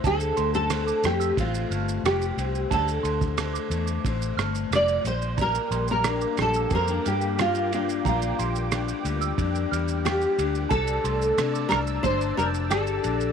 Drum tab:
RD |x-x-x-x-x-x-x-x-|x-x-x-x-x-x-x-x-|x-x-x-x-x-x-x-x-|x-x-x-x-x-x-x-x-|
SH |xxxxxxxxxxxxxxxx|xxxxxxxxxxxxxxxx|xxxxxxxxxxxxxxxx|xxxxxxxxxxxxxxxx|
SD |----r-r-----r---|----r-----r-r---|----r-r-----r---|----r-------r---|
BD |o-------o-------|o--o----o-------|o-------o-------|o-------o-------|

RD |x-x-x-x-x-x-x-x-|
SH |xxxxxxxxxxxxxxxx|
SD |----r-r-----r---|
BD |o-------o-------|